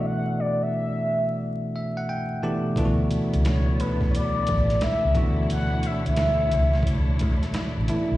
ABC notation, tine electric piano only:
X:1
M:4/4
L:1/16
Q:"Swing 16ths" 1/4=88
K:Bm
V:1 name="Tine electric piano"
[B,,E,A,DF]4 z6 e f g2 [B,,E,A,DGa]2 | [B,,E,A,D=F^F]6 z8 [B,,E,A,DF]2- | [B,,E,A,DF]4 z8 z2 [B,,E,A,DE]2 |]